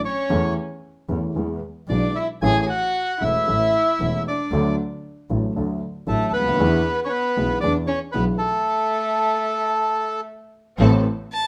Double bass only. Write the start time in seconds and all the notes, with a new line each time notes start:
0.30 E2
1.09 E2
1.35 E2
1.88 B1
2.42 A1
3.22 E1
3.48 A1
4.01 E1
4.51 D2
5.30 A1
5.56 D2
6.08 A1
6.33 D2
6.59 E2
7.37 B1
7.63 E2
8.15 B1
10.79 A1